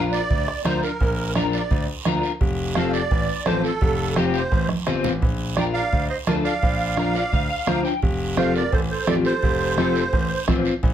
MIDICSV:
0, 0, Header, 1, 7, 480
1, 0, Start_track
1, 0, Key_signature, -2, "major"
1, 0, Tempo, 351083
1, 1371, Time_signature, 4, 2, 24, 8
1, 14950, End_track
2, 0, Start_track
2, 0, Title_t, "Accordion"
2, 0, Program_c, 0, 21
2, 166, Note_on_c, 0, 74, 110
2, 838, Note_off_c, 0, 74, 0
2, 891, Note_on_c, 0, 72, 92
2, 1114, Note_off_c, 0, 72, 0
2, 1134, Note_on_c, 0, 70, 81
2, 1802, Note_off_c, 0, 70, 0
2, 1857, Note_on_c, 0, 74, 71
2, 1963, Note_off_c, 0, 74, 0
2, 2102, Note_on_c, 0, 74, 78
2, 2543, Note_off_c, 0, 74, 0
2, 3755, Note_on_c, 0, 77, 84
2, 3986, Note_off_c, 0, 77, 0
2, 4001, Note_on_c, 0, 74, 98
2, 4729, Note_on_c, 0, 72, 88
2, 4748, Note_off_c, 0, 74, 0
2, 4954, Note_off_c, 0, 72, 0
2, 4977, Note_on_c, 0, 69, 95
2, 5699, Note_on_c, 0, 72, 59
2, 5716, Note_off_c, 0, 69, 0
2, 5806, Note_off_c, 0, 72, 0
2, 5940, Note_on_c, 0, 72, 84
2, 6383, Note_off_c, 0, 72, 0
2, 7612, Note_on_c, 0, 79, 68
2, 7720, Note_off_c, 0, 79, 0
2, 7839, Note_on_c, 0, 77, 103
2, 8292, Note_off_c, 0, 77, 0
2, 8325, Note_on_c, 0, 75, 78
2, 8435, Note_off_c, 0, 75, 0
2, 8563, Note_on_c, 0, 74, 84
2, 8674, Note_off_c, 0, 74, 0
2, 8804, Note_on_c, 0, 77, 94
2, 10674, Note_off_c, 0, 77, 0
2, 11463, Note_on_c, 0, 77, 85
2, 11681, Note_off_c, 0, 77, 0
2, 11703, Note_on_c, 0, 74, 93
2, 11929, Note_on_c, 0, 72, 77
2, 11944, Note_off_c, 0, 74, 0
2, 12037, Note_off_c, 0, 72, 0
2, 12166, Note_on_c, 0, 72, 79
2, 12414, Note_on_c, 0, 74, 87
2, 12416, Note_off_c, 0, 72, 0
2, 12521, Note_off_c, 0, 74, 0
2, 12655, Note_on_c, 0, 72, 91
2, 14275, Note_off_c, 0, 72, 0
2, 14950, End_track
3, 0, Start_track
3, 0, Title_t, "Clarinet"
3, 0, Program_c, 1, 71
3, 7608, Note_on_c, 1, 74, 91
3, 7717, Note_off_c, 1, 74, 0
3, 7856, Note_on_c, 1, 74, 82
3, 8301, Note_off_c, 1, 74, 0
3, 8345, Note_on_c, 1, 72, 67
3, 8450, Note_off_c, 1, 72, 0
3, 8577, Note_on_c, 1, 70, 70
3, 8684, Note_off_c, 1, 70, 0
3, 8821, Note_on_c, 1, 74, 81
3, 10682, Note_off_c, 1, 74, 0
3, 11453, Note_on_c, 1, 72, 94
3, 11676, Note_off_c, 1, 72, 0
3, 11699, Note_on_c, 1, 70, 74
3, 11919, Note_off_c, 1, 70, 0
3, 11942, Note_on_c, 1, 69, 68
3, 12047, Note_off_c, 1, 69, 0
3, 12177, Note_on_c, 1, 69, 65
3, 12397, Note_off_c, 1, 69, 0
3, 12406, Note_on_c, 1, 69, 85
3, 12515, Note_off_c, 1, 69, 0
3, 12647, Note_on_c, 1, 69, 76
3, 14271, Note_off_c, 1, 69, 0
3, 14950, End_track
4, 0, Start_track
4, 0, Title_t, "Clean electric guitar"
4, 0, Program_c, 2, 27
4, 0, Note_on_c, 2, 62, 66
4, 0, Note_on_c, 2, 65, 67
4, 0, Note_on_c, 2, 70, 69
4, 268, Note_off_c, 2, 62, 0
4, 271, Note_off_c, 2, 65, 0
4, 273, Note_off_c, 2, 70, 0
4, 888, Note_on_c, 2, 62, 67
4, 896, Note_on_c, 2, 65, 48
4, 897, Note_on_c, 2, 70, 66
4, 1226, Note_off_c, 2, 62, 0
4, 1226, Note_off_c, 2, 65, 0
4, 1230, Note_off_c, 2, 70, 0
4, 1856, Note_on_c, 2, 62, 68
4, 1865, Note_on_c, 2, 65, 52
4, 1865, Note_on_c, 2, 70, 82
4, 2190, Note_off_c, 2, 62, 0
4, 2192, Note_off_c, 2, 65, 0
4, 2194, Note_off_c, 2, 70, 0
4, 2811, Note_on_c, 2, 62, 68
4, 2821, Note_on_c, 2, 65, 65
4, 2821, Note_on_c, 2, 70, 86
4, 3149, Note_off_c, 2, 62, 0
4, 3149, Note_off_c, 2, 65, 0
4, 3152, Note_off_c, 2, 70, 0
4, 3770, Note_on_c, 2, 60, 63
4, 3780, Note_on_c, 2, 65, 56
4, 3782, Note_on_c, 2, 69, 72
4, 4108, Note_off_c, 2, 60, 0
4, 4108, Note_off_c, 2, 65, 0
4, 4113, Note_off_c, 2, 69, 0
4, 4734, Note_on_c, 2, 60, 60
4, 4742, Note_on_c, 2, 65, 56
4, 4745, Note_on_c, 2, 69, 72
4, 5071, Note_off_c, 2, 60, 0
4, 5071, Note_off_c, 2, 65, 0
4, 5074, Note_off_c, 2, 69, 0
4, 5692, Note_on_c, 2, 60, 68
4, 5701, Note_on_c, 2, 65, 61
4, 5706, Note_on_c, 2, 67, 79
4, 6029, Note_off_c, 2, 60, 0
4, 6031, Note_off_c, 2, 65, 0
4, 6035, Note_off_c, 2, 67, 0
4, 6651, Note_on_c, 2, 60, 78
4, 6662, Note_on_c, 2, 65, 67
4, 6662, Note_on_c, 2, 72, 84
4, 6989, Note_off_c, 2, 60, 0
4, 6991, Note_off_c, 2, 65, 0
4, 6993, Note_off_c, 2, 72, 0
4, 7617, Note_on_c, 2, 62, 64
4, 7620, Note_on_c, 2, 65, 61
4, 7632, Note_on_c, 2, 70, 67
4, 7951, Note_off_c, 2, 62, 0
4, 7954, Note_off_c, 2, 65, 0
4, 7956, Note_off_c, 2, 70, 0
4, 8580, Note_on_c, 2, 62, 68
4, 8586, Note_on_c, 2, 65, 59
4, 8593, Note_on_c, 2, 69, 72
4, 8913, Note_off_c, 2, 62, 0
4, 8916, Note_off_c, 2, 65, 0
4, 8919, Note_off_c, 2, 69, 0
4, 9530, Note_on_c, 2, 62, 76
4, 9536, Note_on_c, 2, 65, 77
4, 9550, Note_on_c, 2, 70, 73
4, 9775, Note_off_c, 2, 70, 0
4, 9781, Note_on_c, 2, 74, 68
4, 9868, Note_off_c, 2, 62, 0
4, 9873, Note_off_c, 2, 65, 0
4, 10000, Note_off_c, 2, 74, 0
4, 10018, Note_on_c, 2, 77, 68
4, 10235, Note_off_c, 2, 77, 0
4, 10251, Note_on_c, 2, 77, 72
4, 10475, Note_off_c, 2, 77, 0
4, 10488, Note_on_c, 2, 62, 87
4, 10497, Note_on_c, 2, 72, 83
4, 10499, Note_on_c, 2, 65, 70
4, 10504, Note_on_c, 2, 82, 59
4, 10719, Note_off_c, 2, 82, 0
4, 10738, Note_on_c, 2, 79, 72
4, 10827, Note_off_c, 2, 62, 0
4, 10830, Note_off_c, 2, 65, 0
4, 10832, Note_off_c, 2, 72, 0
4, 10959, Note_off_c, 2, 79, 0
4, 11443, Note_on_c, 2, 60, 64
4, 11451, Note_on_c, 2, 65, 61
4, 11461, Note_on_c, 2, 69, 67
4, 11783, Note_off_c, 2, 60, 0
4, 11788, Note_off_c, 2, 65, 0
4, 11790, Note_off_c, 2, 69, 0
4, 12404, Note_on_c, 2, 60, 69
4, 12410, Note_on_c, 2, 65, 62
4, 12416, Note_on_c, 2, 67, 61
4, 12743, Note_off_c, 2, 60, 0
4, 12747, Note_off_c, 2, 65, 0
4, 12748, Note_off_c, 2, 67, 0
4, 13369, Note_on_c, 2, 60, 78
4, 13377, Note_on_c, 2, 65, 78
4, 13385, Note_on_c, 2, 69, 84
4, 13706, Note_off_c, 2, 60, 0
4, 13708, Note_off_c, 2, 65, 0
4, 13708, Note_off_c, 2, 69, 0
4, 14322, Note_on_c, 2, 60, 78
4, 14329, Note_on_c, 2, 65, 69
4, 14338, Note_on_c, 2, 72, 66
4, 14660, Note_off_c, 2, 60, 0
4, 14665, Note_off_c, 2, 65, 0
4, 14667, Note_off_c, 2, 72, 0
4, 14950, End_track
5, 0, Start_track
5, 0, Title_t, "Grand piano"
5, 0, Program_c, 3, 0
5, 0, Note_on_c, 3, 34, 82
5, 219, Note_off_c, 3, 34, 0
5, 411, Note_on_c, 3, 38, 79
5, 603, Note_off_c, 3, 38, 0
5, 897, Note_on_c, 3, 38, 79
5, 1086, Note_off_c, 3, 38, 0
5, 1376, Note_on_c, 3, 34, 85
5, 2142, Note_off_c, 3, 34, 0
5, 2334, Note_on_c, 3, 38, 89
5, 2525, Note_off_c, 3, 38, 0
5, 2817, Note_on_c, 3, 38, 79
5, 3007, Note_off_c, 3, 38, 0
5, 3290, Note_on_c, 3, 29, 85
5, 4059, Note_off_c, 3, 29, 0
5, 4256, Note_on_c, 3, 33, 82
5, 4446, Note_off_c, 3, 33, 0
5, 4731, Note_on_c, 3, 33, 82
5, 4924, Note_off_c, 3, 33, 0
5, 5214, Note_on_c, 3, 29, 95
5, 5982, Note_off_c, 3, 29, 0
5, 6174, Note_on_c, 3, 33, 86
5, 6366, Note_off_c, 3, 33, 0
5, 6664, Note_on_c, 3, 31, 72
5, 6875, Note_off_c, 3, 31, 0
5, 6907, Note_on_c, 3, 33, 73
5, 7117, Note_off_c, 3, 33, 0
5, 7138, Note_on_c, 3, 34, 84
5, 7904, Note_off_c, 3, 34, 0
5, 8101, Note_on_c, 3, 38, 84
5, 8290, Note_off_c, 3, 38, 0
5, 8588, Note_on_c, 3, 38, 83
5, 8774, Note_off_c, 3, 38, 0
5, 9061, Note_on_c, 3, 34, 85
5, 9826, Note_off_c, 3, 34, 0
5, 10018, Note_on_c, 3, 38, 86
5, 10208, Note_off_c, 3, 38, 0
5, 10493, Note_on_c, 3, 38, 82
5, 10685, Note_off_c, 3, 38, 0
5, 10974, Note_on_c, 3, 29, 97
5, 11741, Note_off_c, 3, 29, 0
5, 11930, Note_on_c, 3, 33, 84
5, 12122, Note_off_c, 3, 33, 0
5, 12403, Note_on_c, 3, 33, 74
5, 12598, Note_off_c, 3, 33, 0
5, 12895, Note_on_c, 3, 29, 89
5, 13660, Note_off_c, 3, 29, 0
5, 13848, Note_on_c, 3, 33, 87
5, 14040, Note_off_c, 3, 33, 0
5, 14330, Note_on_c, 3, 33, 84
5, 14521, Note_off_c, 3, 33, 0
5, 14806, Note_on_c, 3, 34, 98
5, 14950, Note_off_c, 3, 34, 0
5, 14950, End_track
6, 0, Start_track
6, 0, Title_t, "Two-headed folk drums"
6, 411, Note_on_c, 9, 36, 78
6, 548, Note_off_c, 9, 36, 0
6, 657, Note_on_c, 9, 37, 71
6, 794, Note_off_c, 9, 37, 0
6, 893, Note_on_c, 9, 37, 87
6, 1030, Note_off_c, 9, 37, 0
6, 1374, Note_on_c, 9, 36, 73
6, 1510, Note_off_c, 9, 36, 0
6, 1851, Note_on_c, 9, 37, 71
6, 1988, Note_off_c, 9, 37, 0
6, 2332, Note_on_c, 9, 36, 76
6, 2469, Note_off_c, 9, 36, 0
6, 2807, Note_on_c, 9, 37, 78
6, 2944, Note_off_c, 9, 37, 0
6, 3289, Note_on_c, 9, 36, 75
6, 3426, Note_off_c, 9, 36, 0
6, 3765, Note_on_c, 9, 37, 81
6, 3901, Note_off_c, 9, 37, 0
6, 4251, Note_on_c, 9, 36, 80
6, 4387, Note_off_c, 9, 36, 0
6, 4728, Note_on_c, 9, 37, 94
6, 4865, Note_off_c, 9, 37, 0
6, 5213, Note_on_c, 9, 36, 76
6, 5350, Note_off_c, 9, 36, 0
6, 5691, Note_on_c, 9, 37, 77
6, 5828, Note_off_c, 9, 37, 0
6, 6175, Note_on_c, 9, 36, 70
6, 6311, Note_off_c, 9, 36, 0
6, 6411, Note_on_c, 9, 37, 69
6, 6548, Note_off_c, 9, 37, 0
6, 6653, Note_on_c, 9, 37, 90
6, 6790, Note_off_c, 9, 37, 0
6, 7137, Note_on_c, 9, 36, 78
6, 7274, Note_off_c, 9, 36, 0
6, 7611, Note_on_c, 9, 37, 87
6, 7748, Note_off_c, 9, 37, 0
6, 8099, Note_on_c, 9, 36, 70
6, 8236, Note_off_c, 9, 36, 0
6, 8575, Note_on_c, 9, 37, 92
6, 8711, Note_off_c, 9, 37, 0
6, 9058, Note_on_c, 9, 36, 74
6, 9195, Note_off_c, 9, 36, 0
6, 9534, Note_on_c, 9, 37, 87
6, 9670, Note_off_c, 9, 37, 0
6, 10015, Note_on_c, 9, 36, 76
6, 10151, Note_off_c, 9, 36, 0
6, 10491, Note_on_c, 9, 37, 95
6, 10628, Note_off_c, 9, 37, 0
6, 10971, Note_on_c, 9, 36, 72
6, 11108, Note_off_c, 9, 36, 0
6, 11447, Note_on_c, 9, 37, 83
6, 11584, Note_off_c, 9, 37, 0
6, 11927, Note_on_c, 9, 36, 81
6, 12064, Note_off_c, 9, 36, 0
6, 12405, Note_on_c, 9, 37, 92
6, 12542, Note_off_c, 9, 37, 0
6, 12889, Note_on_c, 9, 36, 73
6, 13026, Note_off_c, 9, 36, 0
6, 13368, Note_on_c, 9, 37, 72
6, 13505, Note_off_c, 9, 37, 0
6, 13846, Note_on_c, 9, 36, 73
6, 13982, Note_off_c, 9, 36, 0
6, 14324, Note_on_c, 9, 37, 94
6, 14326, Note_on_c, 9, 36, 73
6, 14461, Note_off_c, 9, 37, 0
6, 14463, Note_off_c, 9, 36, 0
6, 14805, Note_on_c, 9, 36, 81
6, 14942, Note_off_c, 9, 36, 0
6, 14950, End_track
7, 0, Start_track
7, 0, Title_t, "Drums"
7, 176, Note_on_c, 9, 73, 69
7, 313, Note_off_c, 9, 73, 0
7, 412, Note_on_c, 9, 63, 31
7, 418, Note_on_c, 9, 74, 68
7, 549, Note_off_c, 9, 63, 0
7, 555, Note_off_c, 9, 74, 0
7, 887, Note_on_c, 9, 63, 77
7, 895, Note_on_c, 9, 73, 63
7, 1024, Note_off_c, 9, 63, 0
7, 1031, Note_off_c, 9, 73, 0
7, 1135, Note_on_c, 9, 73, 68
7, 1271, Note_off_c, 9, 73, 0
7, 1374, Note_on_c, 9, 74, 67
7, 1380, Note_on_c, 9, 63, 33
7, 1510, Note_off_c, 9, 74, 0
7, 1516, Note_off_c, 9, 63, 0
7, 1852, Note_on_c, 9, 73, 68
7, 1855, Note_on_c, 9, 63, 88
7, 1989, Note_off_c, 9, 73, 0
7, 1991, Note_off_c, 9, 63, 0
7, 2097, Note_on_c, 9, 73, 69
7, 2234, Note_off_c, 9, 73, 0
7, 2333, Note_on_c, 9, 74, 66
7, 2335, Note_on_c, 9, 63, 32
7, 2470, Note_off_c, 9, 74, 0
7, 2471, Note_off_c, 9, 63, 0
7, 2809, Note_on_c, 9, 63, 85
7, 2812, Note_on_c, 9, 73, 64
7, 2945, Note_off_c, 9, 63, 0
7, 2949, Note_off_c, 9, 73, 0
7, 3054, Note_on_c, 9, 73, 72
7, 3191, Note_off_c, 9, 73, 0
7, 3293, Note_on_c, 9, 74, 64
7, 3299, Note_on_c, 9, 63, 33
7, 3430, Note_off_c, 9, 74, 0
7, 3436, Note_off_c, 9, 63, 0
7, 3772, Note_on_c, 9, 73, 66
7, 3773, Note_on_c, 9, 63, 84
7, 3909, Note_off_c, 9, 63, 0
7, 3909, Note_off_c, 9, 73, 0
7, 4011, Note_on_c, 9, 73, 73
7, 4148, Note_off_c, 9, 73, 0
7, 4254, Note_on_c, 9, 74, 65
7, 4256, Note_on_c, 9, 63, 29
7, 4390, Note_off_c, 9, 74, 0
7, 4393, Note_off_c, 9, 63, 0
7, 4729, Note_on_c, 9, 63, 83
7, 4730, Note_on_c, 9, 73, 64
7, 4865, Note_off_c, 9, 63, 0
7, 4867, Note_off_c, 9, 73, 0
7, 4972, Note_on_c, 9, 73, 63
7, 5109, Note_off_c, 9, 73, 0
7, 5209, Note_on_c, 9, 74, 69
7, 5213, Note_on_c, 9, 63, 35
7, 5346, Note_off_c, 9, 74, 0
7, 5349, Note_off_c, 9, 63, 0
7, 5692, Note_on_c, 9, 63, 81
7, 5692, Note_on_c, 9, 73, 61
7, 5829, Note_off_c, 9, 63, 0
7, 5829, Note_off_c, 9, 73, 0
7, 5933, Note_on_c, 9, 73, 64
7, 6070, Note_off_c, 9, 73, 0
7, 6175, Note_on_c, 9, 74, 62
7, 6176, Note_on_c, 9, 63, 30
7, 6311, Note_off_c, 9, 74, 0
7, 6313, Note_off_c, 9, 63, 0
7, 6405, Note_on_c, 9, 63, 74
7, 6542, Note_off_c, 9, 63, 0
7, 6655, Note_on_c, 9, 73, 63
7, 6791, Note_off_c, 9, 73, 0
7, 6894, Note_on_c, 9, 64, 80
7, 6900, Note_on_c, 9, 73, 75
7, 7031, Note_off_c, 9, 64, 0
7, 7037, Note_off_c, 9, 73, 0
7, 7135, Note_on_c, 9, 63, 36
7, 7142, Note_on_c, 9, 74, 65
7, 7272, Note_off_c, 9, 63, 0
7, 7279, Note_off_c, 9, 74, 0
7, 7613, Note_on_c, 9, 63, 88
7, 7623, Note_on_c, 9, 73, 69
7, 7750, Note_off_c, 9, 63, 0
7, 7760, Note_off_c, 9, 73, 0
7, 7862, Note_on_c, 9, 73, 69
7, 7999, Note_off_c, 9, 73, 0
7, 8099, Note_on_c, 9, 63, 28
7, 8101, Note_on_c, 9, 74, 68
7, 8236, Note_off_c, 9, 63, 0
7, 8238, Note_off_c, 9, 74, 0
7, 8572, Note_on_c, 9, 63, 85
7, 8576, Note_on_c, 9, 73, 68
7, 8709, Note_off_c, 9, 63, 0
7, 8713, Note_off_c, 9, 73, 0
7, 8822, Note_on_c, 9, 73, 73
7, 8958, Note_off_c, 9, 73, 0
7, 9054, Note_on_c, 9, 63, 31
7, 9058, Note_on_c, 9, 74, 68
7, 9191, Note_off_c, 9, 63, 0
7, 9195, Note_off_c, 9, 74, 0
7, 9529, Note_on_c, 9, 63, 80
7, 9538, Note_on_c, 9, 73, 66
7, 9666, Note_off_c, 9, 63, 0
7, 9674, Note_off_c, 9, 73, 0
7, 9774, Note_on_c, 9, 73, 64
7, 9910, Note_off_c, 9, 73, 0
7, 10012, Note_on_c, 9, 63, 32
7, 10013, Note_on_c, 9, 74, 60
7, 10149, Note_off_c, 9, 63, 0
7, 10149, Note_off_c, 9, 74, 0
7, 10486, Note_on_c, 9, 63, 77
7, 10491, Note_on_c, 9, 73, 66
7, 10623, Note_off_c, 9, 63, 0
7, 10628, Note_off_c, 9, 73, 0
7, 10731, Note_on_c, 9, 73, 68
7, 10868, Note_off_c, 9, 73, 0
7, 10963, Note_on_c, 9, 63, 35
7, 10970, Note_on_c, 9, 74, 60
7, 11100, Note_off_c, 9, 63, 0
7, 11107, Note_off_c, 9, 74, 0
7, 11445, Note_on_c, 9, 73, 58
7, 11448, Note_on_c, 9, 63, 86
7, 11582, Note_off_c, 9, 73, 0
7, 11584, Note_off_c, 9, 63, 0
7, 11684, Note_on_c, 9, 73, 62
7, 11821, Note_off_c, 9, 73, 0
7, 11928, Note_on_c, 9, 74, 66
7, 11929, Note_on_c, 9, 63, 35
7, 12065, Note_off_c, 9, 74, 0
7, 12066, Note_off_c, 9, 63, 0
7, 12403, Note_on_c, 9, 63, 85
7, 12409, Note_on_c, 9, 73, 72
7, 12540, Note_off_c, 9, 63, 0
7, 12545, Note_off_c, 9, 73, 0
7, 12645, Note_on_c, 9, 73, 66
7, 12782, Note_off_c, 9, 73, 0
7, 12886, Note_on_c, 9, 74, 69
7, 13023, Note_off_c, 9, 74, 0
7, 13361, Note_on_c, 9, 63, 84
7, 13367, Note_on_c, 9, 73, 66
7, 13497, Note_off_c, 9, 63, 0
7, 13504, Note_off_c, 9, 73, 0
7, 13610, Note_on_c, 9, 73, 70
7, 13747, Note_off_c, 9, 73, 0
7, 13847, Note_on_c, 9, 74, 69
7, 13851, Note_on_c, 9, 63, 31
7, 13984, Note_off_c, 9, 74, 0
7, 13988, Note_off_c, 9, 63, 0
7, 14324, Note_on_c, 9, 63, 78
7, 14329, Note_on_c, 9, 73, 71
7, 14460, Note_off_c, 9, 63, 0
7, 14466, Note_off_c, 9, 73, 0
7, 14562, Note_on_c, 9, 73, 68
7, 14699, Note_off_c, 9, 73, 0
7, 14805, Note_on_c, 9, 63, 37
7, 14806, Note_on_c, 9, 74, 70
7, 14941, Note_off_c, 9, 63, 0
7, 14943, Note_off_c, 9, 74, 0
7, 14950, End_track
0, 0, End_of_file